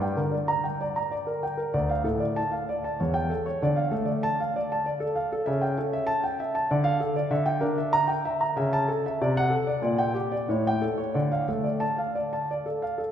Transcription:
grand piano
Already playing: G2
0.02 G5
0.16 D3 A#4
0.32 D5
0.48 A#5
0.64 G5
0.81 D5
0.96 A#5
1.11 D5
1.27 A#4
1.43 G5
1.57 A#4
1.74 D2 D5
1.90 F5
2.04 A2 A4
2.20 D5
2.36 A5
2.52 F5
2.69 D5
2.84 A5
3.00 E2 C#5
3.14 G5
3.30 A4
3.46 C#5
3.62 D3 D5
3.76 F5
3.91 A3 A4
4.05 D5
4.23 A5
4.40 F5
4.56 D5
4.72 A5
4.86 D5
5.00 A4
5.16 F5
5.33 A4
5.46 C#3 E5
5.62 G5
5.78 C#4 A4
5.93 E5
6.07 A5
6.24 G5
6.40 E5
6.55 A5
6.71 D3 D5
6.84 F5
7.00 A4
7.16 D5
7.31 D3 E5
7.46 G5
7.61 D4 A#4
7.78 E5
7.93 A#5
8.08 G5
8.25 E5
8.41 A#5
8.57 C#3 E5
8.73 A5
8.88 A4
9.06 E5
9.21 C3 D5
9.37 F#5
9.50 A4
9.67 D5
9.82 A#2 D5
9.98 G5
10.14 G4
10.32 D5
10.49 A2 C#5
10.67 G5
10.82 A4
10.98 C#5
11.14 D3 D5
11.32 F5
11.48 A3 A4
11.64 D5
11.80 A5
11.98 F5
12.15 D5
12.33 A5
12.51 D5
12.66 A4
12.82 F5
12.98 A4

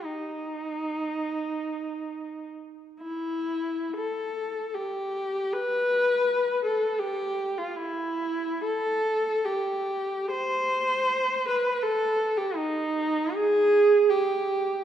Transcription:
viola
0.04 D#4
3.01 E4
3.96 A4
4.74 G4
5.53 B4
6.65 A4
6.99 G4
7.58 F4
7.76 E4
8.64 A4
9.44 G4
10.31 C5
11.49 B4
11.83 A4
12.37 G4
12.56 D#4
13.35 G#4
14.10 G4

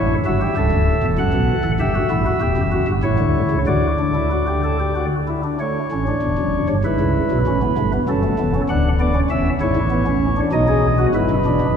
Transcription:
pipe organ
Already playing: A1 A2 E4 C#5
0.26 G1 G2 F#4 E5
0.41 G4
0.57 C#1 C#2 A4
0.72 D1 D2
1.03 E1 E2
1.18 F#1 F#2 F#5
1.33 B1 B2
1.65 A1 A2
1.80 G1 G2 G4 E5
1.95 F#4
2.10 A1 A2 E4
2.26 F#4
2.41 E1 E2 G4
2.57 F#1 F#2
2.72 F#4
2.88 G1 G2
3.03 A1 A2 E4 C#5
3.19 D2 D3
3.51 C#2 C#3
3.67 D2 D3 F#4 D5
3.99 D4
4.15 E4
4.31 F#4
4.47 G4
4.64 A4
4.80 G4
4.96 F#4
5.28 E4
5.44 D4
5.60 A3 C#5
5.91 A1 A2 C#4
6.07 D4
6.22 E1 E2
6.38 F#1 F#2
6.69 G1 G2
6.85 G#1 G#2 E4 B4
7.00 C#2 C#3
7.31 B1 B2
7.47 A1 A2 C#4
7.62 B3
7.78 G1 G2 A3
7.94 B3
8.08 F#1 F#2 C#4 A4
8.24 A3
8.39 E1 E2 B3
8.55 C#4
8.69 D1 D2 D4 F#5
9.00 B3 D5
9.15 C#4
9.30 E1 E2 C#4 E5
9.61 G#1 G#2 E4 C#5
9.76 A1 A2
9.91 B3
10.06 C#4
10.37 D4
10.53 B1 B2 D#4 D#5
10.68 G#4
10.99 F#4
11.15 G#1 G#2 E4 B4
11.30 F#1 F#2
11.45 E1 E2 D4
11.61 F#1 F#2

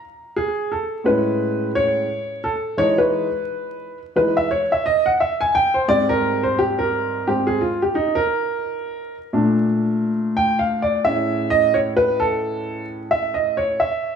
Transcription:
upright piano
0.36 G#4
0.72 A4
1.04 A2 G#3 C#4 B4
1.75 C#5
2.44 A4
2.77 E3 G#3 D#4 C#5
2.98 B4
4.16 E3 G#3 D#4 B4
4.37 E5
4.51 C#5
4.72 E5
4.86 D#5
5.06 F#5
5.20 E5
5.41 G#5
5.55 G5
5.74 C5
5.88 G#2 G3 C4 D5
6.09 A#4
6.43 C5
6.59 G4
6.79 A#4
7.27 G#2 G3 C4 G4
7.47 G#4
7.61 F4
7.82 G4
7.95 D#4
8.15 A#4
9.33 A#2 A3 D4
10.37 G5
10.59 F5
10.82 D5
11.05 A2 C#4 G#4 E5
11.50 D#5
11.74 C#5
11.97 B4
12.20 A4
13.11 E5
13.34 D#5
13.57 C#5
13.80 E5

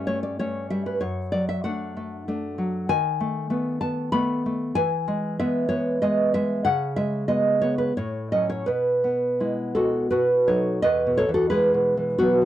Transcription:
nylon-string guitar
Already playing: G2 G3 C#4
0.07 A3 C#5
0.23 D5
0.39 A3 C#4 C#5
0.70 G3 E5
0.86 B4
1.01 F#2 C#5
1.32 F#3 D5
1.49 E5
1.64 A3 D4 F#5
1.97 A3
2.28 A3 D4
2.58 F#3
2.89 D#3 G#5
3.20 A3
3.50 A3 B3
3.81 B3 A5
4.12 A3 B3 B5
4.46 A3
4.75 E3 G#5
5.08 G#3
5.40 G#3 B3 E5
5.69 B3 C#5
6.02 G#3 B3 D#5
6.34 G#3 E5
6.65 C#3 F#5
6.96 G#3 E5
7.28 G#3 B3 D#5
7.62 B3 C#5
7.78 B4
7.97 A2 C#5
8.32 F#3 C#4 D#5
8.50 C#5
8.66 B2 B4
9.04 B3
9.40 G#3 E4
9.75 G#3 F#4 A4
10.10 B2 F#4 B4
10.48 F#3 D#4 A4 C#5
10.82 E2 B4 D#5
11.07 B2
11.17 A4 C#5
11.29 E3
11.34 F#4 A4
11.50 G#3 G#4 B4
11.74 B2
11.97 E3
12.19 F#3 B3 F#4
12.42 E3

